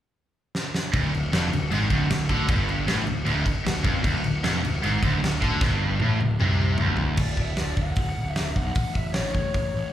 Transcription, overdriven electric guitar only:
0.93 D2
1.14 D2
1.32 F2
1.52 D2
1.71 G#2
1.90 D2
2.10 D2
2.30 D3
2.48 G2
2.87 A2
3.06 D2
3.25 D2
3.65 D2
3.83 F2
4.03 D2
4.24 D2
4.44 F2
4.63 D2
4.82 G#2
5.03 D2
5.23 D2
5.42 D3
5.62 G2
6.02 A2
6.22 D2
6.40 C3
6.80 D2

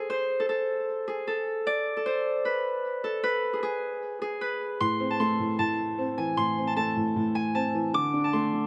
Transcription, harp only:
Already playing: G#4
0.10 C5
0.40 A4
0.49 A4
1.08 G#4
1.27 A4
1.67 D5
1.97 A4
2.06 C5
2.45 B4
3.04 A4
3.23 B4
3.53 G#4
3.63 G#4
4.22 G#4
4.41 B4
4.80 C6
5.10 A5
5.20 C6
5.59 A5
6.18 G#5
6.37 C6
6.67 A5
6.77 A5
7.35 G#5
7.55 A5
7.94 D6
8.24 A5
8.33 C6

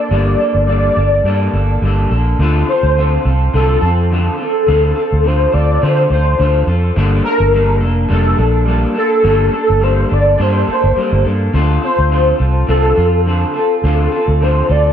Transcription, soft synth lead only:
Already playing: D5
0.66 D5
2.69 C5
3.54 A4
4.43 A4
5.27 C5
5.53 D5
5.83 C5
6.12 C5
7.24 A#4
8.13 A4
8.97 A4
9.83 C5
10.13 D5
10.42 C5
10.72 C5
11.84 C5
12.68 A4
13.56 A4
14.43 C5
14.71 D5

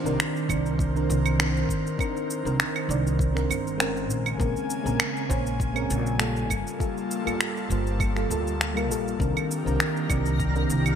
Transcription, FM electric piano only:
0.04 D#3 C4 D4 A#4
0.48 D#3 C4 D4 D5
0.94 D#3 C4 D4 A#4
1.38 D#3 C4 D4 A#4
1.97 D#3 C4 D4 A#4
2.43 D#3 C4 D4 A#4
2.87 D#3 C4 D4 D5
3.33 D#3 C4 D4 A#4
3.77 G#3 C4 C#4 A#4
4.38 G#3 C4 C#4 A#4
4.83 G#3 C4 C#4 A#4
5.28 G#3 C#4 C5 C#5
5.73 G#3 C4 C#4 A#4
6.18 G3 A#3 F4 A4
6.79 G3 A#3 F4 A4
7.24 G3 A#3 F4 A4
7.69 G3 A#3 F4 C5
8.15 G3 A#3 F4 A4
8.29 G3 A#3 F4 A4
8.74 G3 A#3 F4 A#4
8.88 G3 A#3 F4 A4
9.18 D#3 C4 D4 A#4
9.64 D#3 C4 D4 A#4
10.08 D#3 C4 D4 D5
10.53 D#3 C4 D4 A#4

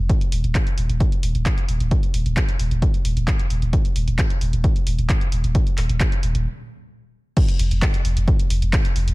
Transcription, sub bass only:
0.32 D#1
0.44 D#1
0.78 D#1
0.89 D#1
1.23 D#1
1.35 D#1
1.69 D#1
1.80 D#1
2.14 D#1
2.26 D#1
2.59 D#1
2.71 D#1
3.05 D#1
3.17 D#1
3.50 D#1
3.62 D#1
3.96 D#1
4.08 D#1
4.41 D#1
4.53 D#1
4.87 D#1
4.99 D#1
5.32 D#1
5.44 D#1
5.78 D#1
5.89 D#1
6.23 D#1
6.35 D#1
7.59 F1
7.71 F1
8.05 F1
8.17 F1
8.50 F1
8.62 F1
8.96 F1
9.08 F1

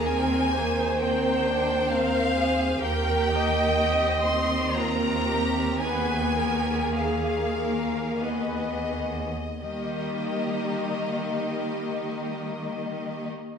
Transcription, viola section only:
0.04 A#4
0.53 C5
2.80 A#4
3.31 D#5
4.77 A#4
5.83 B4
6.38 A#4
6.97 G#4
7.58 A#4
8.21 B4
9.62 G3 A#3

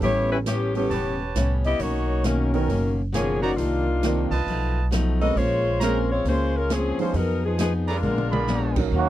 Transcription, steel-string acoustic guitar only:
0.01 A2 G3 B3 C#4
0.47 A2 G3 B3 C#4
0.90 A2 G3 B3 C#4
1.35 A2 G3 B3 C#4
1.79 B2 D#3 A#3 C#4
2.24 B2 D#3 A#3 C#4
2.69 B2 D#3 A#3 C#4
3.12 B2 D#3 A#3 C#4
3.56 C3 D#3 A#3 D4
4.03 C3 D#3 A#3 D4
4.48 B2 F3 A3 D#4
4.91 B2 F3 A3 D#4
5.36 A#3 C#4 G#4 C5
5.81 A#3 C#4 G#4 C5
6.26 A#3 C#4 G#4 C5
6.70 A#3 C#4 G#4 C5
7.14 F3 B3 D#4 G#4
7.58 F3 B3 D#4 G#4
8.04 A#2 G#3 B3 D4
8.48 A#2 G#3 B3 D4
8.92 D#3 A#3 C#4 F#4

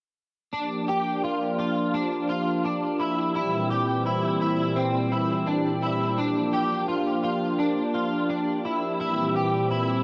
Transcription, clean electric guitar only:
0.53 D4
0.88 G4
1.24 F4
1.59 F4
1.94 D4
2.29 F4
2.65 D4
3.00 E4
3.35 E4
3.70 G4
4.06 E4
4.41 E4
4.76 C4
5.12 E4
5.47 D4
5.82 E4
6.18 D4
6.53 G4
6.88 F4
7.23 F4
7.59 D4
7.94 F4
8.29 D4
8.65 E4
9.00 E4
9.36 G4
9.71 E4

